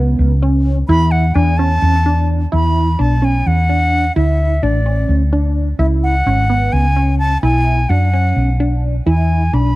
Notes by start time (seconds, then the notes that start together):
Already playing: C#2 B3
0.19 C#2
0.42 C#4
0.89 E2 E4 B5
1.11 F#5
1.35 E2 D4 G#5
1.58 C#4 A5
1.82 E2
2.06 D4
2.52 E2 E4 B5
2.99 B1 D4 A5
3.22 C#4 G#5
3.46 E2 F#5
3.69 D4
4.16 D2 E4 E5
4.62 A1 D4 D5
4.86 C#4
5.09 D2
5.33 D4
5.79 C#2 E4 E5
6.03 F#5
6.26 G#1 C#4
6.50 B3
6.73 C#2 G#5
6.96 C#4
7.19 A5
7.43 B1 E4 G#5
7.89 F#2 D4 F#5
8.13 C#4
8.36 B1
8.60 D4
9.06 E2 E4 G#5
9.53 B1 D4 B5